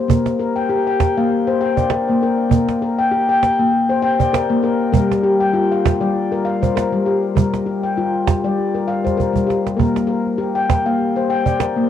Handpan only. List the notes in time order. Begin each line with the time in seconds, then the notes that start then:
Already playing: C5
0.08 A#3 A#4
0.40 A#4
0.56 G5
0.69 G4
0.87 G5
1.17 A#3 F5
1.47 C5
1.61 G5
1.77 D5
1.92 A#4
2.09 A#3
2.23 A#4
2.49 A#3 A#4
2.82 A#4
2.98 G5
3.11 G4
3.29 G5
3.59 A#3
3.89 C5
4.02 G5
4.19 D5
4.33 A#4
4.50 A#3
4.64 A#4
4.92 G3 A#4
5.24 G4
5.40 G5
5.54 F4
5.72 F5
6.01 G3 D5
6.32 A#4
6.45 F5
6.62 C5
6.76 A#4
6.92 G3
7.06 G4
7.35 G3 A#4
7.66 G4
7.83 G5
7.97 F4
8.44 G3 D5
8.74 A#4
8.88 F5
9.04 C5
9.17 A#4
9.33 G3
9.47 G4
9.77 A#3 A#4
10.07 A#4
10.38 G4
10.55 G5
10.86 A#3 F5
11.16 C5
11.30 G5
11.46 D5
11.60 A#4
11.76 A#3